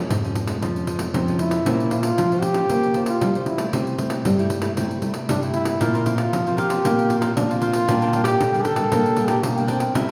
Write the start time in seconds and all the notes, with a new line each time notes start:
Already playing: G#3
0.09 F2 G#2, pandeiro
0.24 F3 G#3 C#4, pandeiro
0.35 pandeiro
0.47 F3 G#3 C#4, pandeiro
0.61 F2 F3 G#3 C#4, pandeiro
0.76 pandeiro
0.87 F3 G#3 C#4, pandeiro
0.99 pandeiro
1.13 F2 F3 C4, pandeiro
1.28 F3 G#3 C#4, pandeiro
1.39 E4, pandeiro
1.51 pandeiro
1.65 A#2 A#3 C#4 F4 C5, pandeiro
1.80 pandeiro
1.90 C#4 F4 C5, pandeiro
2.02 F4, pandeiro
2.18 F3, pandeiro
2.32 C#4 F4 C5, pandeiro
2.42 G4, pandeiro
2.54 C#4 F4 C5, pandeiro
2.69 A#3 C#4 F4 C5, pandeiro
2.83 pandeiro
2.94 C#4 F4 C5, pandeiro
3.06 F4, pandeiro
3.21 F3 G3, pandeiro
3.35 C#4 F4 C5, pandeiro
3.46 E4, pandeiro
3.58 G3 A3 E4, pandeiro
3.73 C3 C4, pandeiro
3.87 pandeiro
3.98 G3 A3 E4, pandeiro
4.10 pandeiro
4.25 G2 G3, pandeiro
4.38 G3 A3 E4, pandeiro
4.50 pandeiro
4.61 G3 A3 E4, pandeiro
4.76 C3 G3 A3 C4 E4, pandeiro
4.91 pandeiro
5.01 G3 A3 E4, pandeiro
5.14 pandeiro
5.28 G2 C3 D4, pandeiro
5.43 G3 A3 E4, pandeiro
5.54 E4, pandeiro
5.65 pandeiro
5.80 A#2 F3 C4 F4 A#4 C5 F5, pandeiro
5.94 F4 A#4 C5 F5, pandeiro
6.05 F3 C4 F4 A#4 C5 F5, pandeiro
6.17 F4, pandeiro
6.33 F3, pandeiro
6.46 F3 C4 F4 A#4 C5 F5, pandeiro
6.57 F4 G4 A#4 C5 F5, pandeiro
6.69 F3 C4 F4 A#4 C5 F5, pandeiro
6.84 A#2 F3 A#3 C4 F4 A#4 C5 F5, pandeiro
6.99 pandeiro
7.09 F4 A#4 C5 F5, pandeiro
7.21 F3 C4 F4 A#4 C5 F5, pandeiro
7.36 A#2 F3 D4, pandeiro
7.49 F3 C4 F4 A#4 C5 F5, pandeiro
7.60 F4 A#4 C5 F5, pandeiro
7.72 A#4 C5 F5, pandeiro
7.87 A#2 G3 A#3 D4 A#4 D5 G5, pandeiro
8.01 D4 A#4 D5 G5, pandeiro
8.12 G3 A#3 D4 A#4 D5 G5, pandeiro
8.24 G4, pandeiro
8.40 A#2 D3, pandeiro
8.53 G3 A#3 D4 A#4 D5 G5, pandeiro
8.64 D4 A4 A#4 D5 G5, pandeiro
8.76 G3 A#3 D4 A#4 D5 G5, pandeiro
8.91 A#2 G3 A#3 D4 A#4 D5 G5, pandeiro
9.06 pandeiro
9.16 G3 A#3 D4 A#4 D5 G5, pandeiro
9.28 D4 G4 A#4 D5 G5, pandeiro
9.43 B2 A#3, pandeiro
9.56 G3 A#3 D4 A#4 D5 G5, pandeiro
9.68 C4 D4 A#4 D5 G5, pandeiro
9.79 A#4 D5 G5, pandeiro
9.95 C3 G3 A#3 E4 A#4 C5 E5, pandeiro